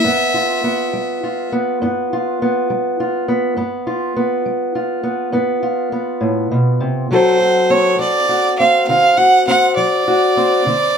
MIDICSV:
0, 0, Header, 1, 3, 480
1, 0, Start_track
1, 0, Tempo, 589391
1, 32, Time_signature, 12, 3, 24, 8
1, 8940, End_track
2, 0, Start_track
2, 0, Title_t, "Fiddle"
2, 0, Program_c, 0, 110
2, 0, Note_on_c, 0, 76, 93
2, 1229, Note_off_c, 0, 76, 0
2, 5806, Note_on_c, 0, 72, 94
2, 6272, Note_on_c, 0, 73, 97
2, 6284, Note_off_c, 0, 72, 0
2, 6512, Note_off_c, 0, 73, 0
2, 6517, Note_on_c, 0, 74, 98
2, 6962, Note_off_c, 0, 74, 0
2, 6993, Note_on_c, 0, 77, 92
2, 7216, Note_off_c, 0, 77, 0
2, 7229, Note_on_c, 0, 77, 108
2, 7470, Note_on_c, 0, 78, 109
2, 7482, Note_off_c, 0, 77, 0
2, 7710, Note_off_c, 0, 78, 0
2, 7715, Note_on_c, 0, 78, 98
2, 7938, Note_off_c, 0, 78, 0
2, 7947, Note_on_c, 0, 74, 98
2, 8940, Note_off_c, 0, 74, 0
2, 8940, End_track
3, 0, Start_track
3, 0, Title_t, "Steel-string acoustic guitar"
3, 0, Program_c, 1, 25
3, 34, Note_on_c, 1, 43, 68
3, 40, Note_on_c, 1, 59, 51
3, 278, Note_on_c, 1, 65, 52
3, 465, Note_off_c, 1, 43, 0
3, 516, Note_off_c, 1, 59, 0
3, 519, Note_on_c, 1, 59, 58
3, 760, Note_on_c, 1, 55, 63
3, 1003, Note_off_c, 1, 65, 0
3, 1006, Note_on_c, 1, 65, 46
3, 1188, Note_off_c, 1, 55, 0
3, 1237, Note_off_c, 1, 59, 0
3, 1241, Note_on_c, 1, 59, 57
3, 1480, Note_on_c, 1, 43, 76
3, 1484, Note_off_c, 1, 59, 0
3, 1487, Note_on_c, 1, 59, 55
3, 1719, Note_off_c, 1, 65, 0
3, 1734, Note_on_c, 1, 65, 59
3, 1908, Note_off_c, 1, 43, 0
3, 1959, Note_off_c, 1, 59, 0
3, 1971, Note_on_c, 1, 59, 53
3, 2200, Note_on_c, 1, 55, 58
3, 2434, Note_off_c, 1, 65, 0
3, 2443, Note_on_c, 1, 65, 54
3, 2627, Note_off_c, 1, 55, 0
3, 2664, Note_off_c, 1, 59, 0
3, 2674, Note_on_c, 1, 59, 61
3, 2884, Note_off_c, 1, 59, 0
3, 2888, Note_off_c, 1, 65, 0
3, 2905, Note_on_c, 1, 43, 72
3, 2911, Note_on_c, 1, 59, 57
3, 3150, Note_on_c, 1, 65, 50
3, 3340, Note_off_c, 1, 43, 0
3, 3382, Note_off_c, 1, 59, 0
3, 3392, Note_on_c, 1, 59, 55
3, 3630, Note_on_c, 1, 55, 55
3, 3861, Note_off_c, 1, 65, 0
3, 3871, Note_on_c, 1, 65, 54
3, 4062, Note_off_c, 1, 55, 0
3, 4090, Note_off_c, 1, 59, 0
3, 4100, Note_on_c, 1, 59, 53
3, 4332, Note_off_c, 1, 59, 0
3, 4336, Note_on_c, 1, 43, 75
3, 4342, Note_on_c, 1, 59, 58
3, 4572, Note_off_c, 1, 65, 0
3, 4582, Note_on_c, 1, 65, 60
3, 4775, Note_off_c, 1, 43, 0
3, 4814, Note_off_c, 1, 59, 0
3, 4823, Note_on_c, 1, 59, 48
3, 5055, Note_on_c, 1, 45, 63
3, 5302, Note_off_c, 1, 45, 0
3, 5306, Note_on_c, 1, 47, 60
3, 5541, Note_on_c, 1, 48, 61
3, 5548, Note_off_c, 1, 47, 0
3, 5758, Note_off_c, 1, 59, 0
3, 5758, Note_off_c, 1, 65, 0
3, 5784, Note_off_c, 1, 48, 0
3, 5787, Note_on_c, 1, 50, 67
3, 5793, Note_on_c, 1, 54, 56
3, 5803, Note_on_c, 1, 60, 53
3, 5807, Note_on_c, 1, 66, 57
3, 5811, Note_on_c, 1, 69, 61
3, 6030, Note_off_c, 1, 66, 0
3, 6034, Note_on_c, 1, 66, 45
3, 6221, Note_off_c, 1, 50, 0
3, 6268, Note_off_c, 1, 60, 0
3, 6271, Note_on_c, 1, 60, 61
3, 6503, Note_off_c, 1, 54, 0
3, 6507, Note_on_c, 1, 54, 56
3, 6749, Note_off_c, 1, 66, 0
3, 6752, Note_on_c, 1, 66, 46
3, 6942, Note_off_c, 1, 54, 0
3, 7001, Note_off_c, 1, 60, 0
3, 7004, Note_on_c, 1, 60, 56
3, 7238, Note_on_c, 1, 50, 73
3, 7240, Note_off_c, 1, 60, 0
3, 7243, Note_on_c, 1, 60, 54
3, 7463, Note_off_c, 1, 66, 0
3, 7473, Note_on_c, 1, 66, 57
3, 7668, Note_off_c, 1, 50, 0
3, 7709, Note_off_c, 1, 60, 0
3, 7718, Note_on_c, 1, 60, 57
3, 7957, Note_on_c, 1, 54, 58
3, 8194, Note_off_c, 1, 66, 0
3, 8206, Note_on_c, 1, 66, 58
3, 8388, Note_off_c, 1, 54, 0
3, 8438, Note_off_c, 1, 60, 0
3, 8446, Note_on_c, 1, 60, 62
3, 8652, Note_off_c, 1, 60, 0
3, 8653, Note_off_c, 1, 66, 0
3, 8657, Note_off_c, 1, 69, 0
3, 8685, Note_on_c, 1, 50, 65
3, 8692, Note_on_c, 1, 60, 55
3, 8940, Note_off_c, 1, 50, 0
3, 8940, Note_off_c, 1, 60, 0
3, 8940, End_track
0, 0, End_of_file